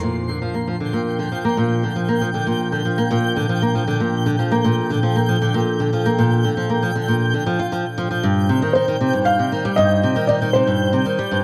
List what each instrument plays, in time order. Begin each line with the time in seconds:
0.03 nylon-string guitar A#2, ambient pad A#2 F3 D4 A#4, synth texture G5 G6
0.29 nylon-string guitar D3
0.42 nylon-string guitar F3
0.54 nylon-string guitar A#3
0.68 nylon-string guitar F3
0.80 nylon-string guitar D3
0.93 nylon-string guitar A#2
1.19 nylon-string guitar D3
1.32 nylon-string guitar F3
1.45 nylon-string guitar A#3
1.57 nylon-string guitar A#2
1.83 nylon-string guitar D3
1.96 nylon-string guitar F3
2.08 nylon-string guitar A#3
2.21 nylon-string guitar F3
2.34 nylon-string guitar D3
2.47 nylon-string guitar A#2
2.72 nylon-string guitar D3
2.85 nylon-string guitar F3
2.98 nylon-string guitar A#3
3.11 nylon-string guitar A#2
3.36 nylon-string guitar D3
3.49 nylon-string guitar F3
3.62 nylon-string guitar A#3
3.75 nylon-string guitar F3
3.88 nylon-string guitar D3
4.00 nylon-string guitar A#2
4.14 ambient pad A4
4.26 nylon-string guitar D3
4.39 nylon-string guitar F3
4.51 nylon-string guitar A#3
4.64 nylon-string guitar A#2
4.90 nylon-string guitar D3
5.03 nylon-string guitar F3
5.16 nylon-string guitar A#3
5.29 nylon-string guitar F3
5.42 nylon-string guitar D3
5.54 nylon-string guitar A#2
5.80 nylon-string guitar D3
5.93 nylon-string guitar F3
6.06 nylon-string guitar A#3
6.18 nylon-string guitar A#2
6.44 nylon-string guitar D3
6.57 nylon-string guitar F3
6.70 nylon-string guitar A#3
6.83 nylon-string guitar F3
6.95 nylon-string guitar D3
7.08 nylon-string guitar A#2
7.34 nylon-string guitar D3
7.46 nylon-string guitar F3
7.59 nylon-string guitar F4
7.72 nylon-string guitar F3
7.98 nylon-string guitar F3
8.11 nylon-string guitar F3
8.23 nylon-string guitar G2, ambient pad G3 D#4 C5
8.49 nylon-string guitar C3
8.62 nylon-string guitar D#3
8.73 nylon-string guitar D#3, felt piano C5
8.88 nylon-string guitar D#3
9.01 nylon-string guitar C3
9.13 nylon-string guitar G2
9.25 felt piano F5
9.39 nylon-string guitar C3
9.52 nylon-string guitar D#3
9.65 nylon-string guitar G3
9.76 nylon-string guitar G2, felt piano D#5
10.03 nylon-string guitar C3
10.16 nylon-string guitar D#3
10.27 nylon-string guitar D#3, felt piano D5
10.42 nylon-string guitar D#3
10.53 nylon-string guitar C3, felt piano C5
10.67 nylon-string guitar G2
10.93 nylon-string guitar C3
11.06 nylon-string guitar D#3
11.19 nylon-string guitar G3
11.31 nylon-string guitar G2